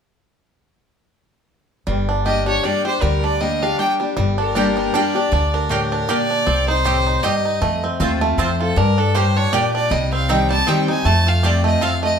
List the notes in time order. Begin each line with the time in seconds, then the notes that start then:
1.87 G1 G2 G3
2.09 D4
2.26 G3 A#3 D4 G4 D#5
2.46 D4 G4 C#5
2.64 G3 A#3 D4 G4 D5
2.85 D4 G4 C5
3.02 D2 D3 G3 A#4
3.24 D4 D5
3.40 G3 A#3 D4 G4 D#5
3.62 D4 G4 F5
3.79 G3 A#3 D4 G4 G5
4.00 G3 D4 G4
4.17 G1 G2 G3
4.38 D4 A#4
4.55 G3 A#3 D4 G4 D5 G5
4.77 G3
4.94 G3 A#3 D4 G4 D5 G5
5.15 D4 G4
5.32 D2 D3 D4
5.54 D4 A#4
5.69 A2 A#3 G4 D5 G5
5.92 D4
6.09 A#2 A#3 G4 D5 G5
6.30 D4
6.47 C2 C3 C4
6.68 D#4 C5
6.84 A2 C4 G4 D#5 G5
7.07 D#4
7.23 G2 C4 G4 D#5 G5
7.45 D#4
7.61 F2 A3
7.84 C4
8.00 D#2 F3 A3 C4 F4 C5 A5
8.21 A3 C4 F4
8.38 F2 C4 F4 C5 A5
8.60 F4 A4
8.76 G2 D4 A#4
8.98 D4 A4
9.15 A2 A#3 G4 C5 D5 G5
9.37 D4 C#5
9.53 A#2 A#3 G4 D5 G5
9.74 D4 D5
9.91 C2 C3 G3 D#5
10.13 C4 F5
10.29 D#3 G3 C4 D#4 G4 D#5 G5
10.50 G3 C4 G4 A5
10.67 D#3 G3 C4 G4 D#5 G5
10.88 C4 D#4 G4 G#5
11.05 F2 A3 A5
11.27 F4 F5
11.43 F3 A3 C4 F4 G4 C5 D5 A5
11.64 A3 D#5
11.81 F2 C4 F4 C5 F5 A5
12.03 A3 D#5